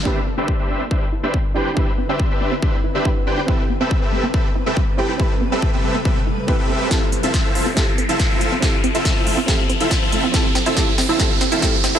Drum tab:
HH |----------------|----------------|----------------|----------------|
SD |----------------|----------------|----------------|----------------|
BD |o---o---o---o---|o---o---o---o---|o---o---o---o---|o---o---o---o---|

HH |x-xxx-o-x-xxx-x-|x-xxx-o-x-xxx-x-|x-xxx-o-x-xxx-x-|
SD |o---o---o---o---|o---o---o---o---|o-o-o-o-o-o-o-o-|
BD |o---o---o---o---|o---o---o---o---|o---o---o---o---|